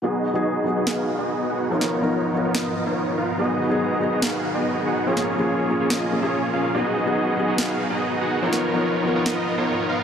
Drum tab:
SD |--------o-------|-o------o-------|--------o-------|-o------o-------|

SD |--------o-------|-o------o-------|